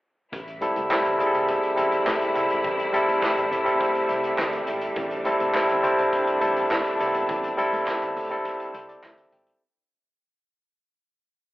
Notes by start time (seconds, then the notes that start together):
0.32 A1 C3 G3 A3 E4, kick, closed hi-hat, muted conga, low conga
0.47 closed hi-hat
0.61 G3 C4 E4 A4, closed hi-hat, muted conga, high conga
0.76 C2, closed hi-hat, high conga
0.90 G3 C4 E4 A4, kick, snare, clap, muted conga
1.05 A1, closed hi-hat
1.18 G3 C4 E4 G#4, closed hi-hat, low conga
1.26 A4
1.34 C2, closed hi-hat
1.48 kick, closed hi-hat, muted conga
1.63 closed hi-hat
1.76 A1 G3 C4 E4 A4, closed hi-hat, muted conga, high conga
1.92 closed hi-hat
2.07 A2, kick, snare, clap, muted conga
2.21 closed hi-hat
2.34 C2 G3 C4 E4 A4, closed hi-hat
2.50 G#1, closed hi-hat
2.64 A1, kick, closed hi-hat, low conga
2.79 closed hi-hat
2.92 G3 C4 E4 A4, closed hi-hat, muted conga, high conga
3.08 A2, closed hi-hat, high conga
3.22 kick, snare, clap, muted conga
3.37 A1, closed hi-hat
3.51 A2 D5, closed hi-hat, low conga
3.64 G3 C4 E4 A4, closed hi-hat
3.79 C5, kick, closed hi-hat, muted conga
3.95 closed hi-hat
4.09 C2 E5, closed hi-hat, muted conga, high conga
4.24 closed hi-hat
4.39 D2 G5, kick, snare, clap, muted conga
4.53 closed hi-hat
4.67 G#1, closed hi-hat
4.81 closed hi-hat
4.96 A1 D4, kick, closed hi-hat, muted conga, low conga
5.11 closed hi-hat
5.25 G3 C4 E4 A4, closed hi-hat, high conga
5.40 C2, closed hi-hat, high conga
5.54 G3 C4 E4 A4, kick, snare, clap, muted conga
5.69 A1, closed hi-hat
5.83 G3 C4 E4 C5, closed hi-hat, muted conga, low conga
5.98 C2, closed hi-hat
6.13 kick, closed hi-hat
6.27 closed hi-hat
6.40 A1 G3 C4 E4 A4, closed hi-hat, high conga
6.56 closed hi-hat
6.71 A2, kick, snare, clap, muted conga
6.85 closed hi-hat
6.99 C2 G3 B3 E4 A4, closed hi-hat
7.06 C4
7.14 G#1, closed hi-hat
7.29 A1, kick, closed hi-hat, low conga
7.44 closed hi-hat
7.57 G3 C4 E4 A4, closed hi-hat, muted conga, high conga
7.73 A2, closed hi-hat, high conga
7.86 kick, clap, muted conga
7.88 snare, clap
8.02 A1, closed hi-hat
8.16 A2, open hi-hat, muted conga, low conga
8.30 G3 C4 E4 A4, closed hi-hat, high conga
8.45 kick, closed hi-hat, muted conga
8.60 closed hi-hat
8.74 C2 C5, closed hi-hat, muted conga, high conga
8.89 D5, closed hi-hat
9.03 D2 E5, kick, snare, clap
9.17 closed hi-hat
9.32 G#1 G5, closed hi-hat, muted conga, low conga
9.47 closed hi-hat